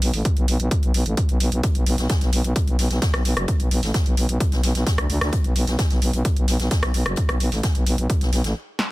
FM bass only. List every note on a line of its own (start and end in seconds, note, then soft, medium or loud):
0.02 0.12 B1 loud
0.14 0.23 A1 medium
0.37 0.46 B1 medium
0.48 0.58 B1 medium
0.60 0.69 B1 loud
0.83 0.92 B1 medium
0.94 1.04 B1 medium
1.06 1.15 A1 medium
1.29 1.38 B1 medium
1.40 1.50 B1 loud
1.52 1.62 B1 medium
1.75 1.85 B1 medium
1.87 1.96 B1 loud
1.98 2.08 B1 medium
2.21 2.31 B1 medium
2.33 2.42 B1 loud
2.44 2.54 B1 medium
2.67 2.77 B1 medium
2.79 2.88 B1 loud
2.90 3.00 B1 medium
3.14 3.23 B1 medium
3.25 3.35 B1 loud
3.37 3.46 F#1 medium
3.60 3.69 B1 medium
3.71 3.81 B1 loud
3.83 3.92 A1 medium
4.06 4.15 B1 medium
4.17 4.27 B1 loud
4.29 4.38 B1 medium
4.52 4.61 B1 medium
4.63 4.73 B1 loud
4.75 4.85 B1 medium
4.98 5.08 D2 medium
5.10 5.19 D2 loud
5.21 5.31 D2 medium
5.44 5.54 B1 medium
5.56 5.65 B1 loud
5.67 5.77 B1 medium
5.90 6.00 B1 medium
6.02 6.12 B1 loud
6.13 6.23 B1 loud
6.37 6.46 B1 medium
6.48 6.58 B1 loud
6.60 6.69 B1 medium
6.83 6.92 B1 medium
6.94 7.04 B1 loud
7.06 7.15 F#1 medium
7.29 7.38 B1 medium
7.40 7.50 B1 loud
7.52 7.61 A1 medium
7.75 7.85 B1 medium
7.86 7.96 B1 loud
7.98 8.08 B1 loud
8.21 8.31 B1 medium
8.33 8.42 B1 loud
8.44 8.54 A1 medium